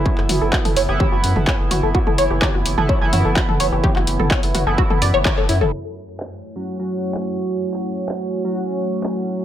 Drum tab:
CC |----------------|----------------|----------------|x---------------|
HH |--o--oo---o---o-|--o---o---o---o-|--o--oo---o---o-|----------------|
SH |----------------|----------------|----------------|xx-xxx-xxx-xxx-x|
CP |-x--x-------x---|----x-------x---|-x--x-------x---|----x-------x---|
T2 |--o--o--o--o--o-|-o--o--o--o--o--|o--o--o--o--o--o|----------------|
BD |o---o---o---o---|o---o---o---o---|o---o---o---o---|----------------|

CC |----------------|
HH |----------------|
SH |xx-xxx-xxx-xxx-x|
CP |-x--x-------x---|
T2 |----------------|
BD |----------------|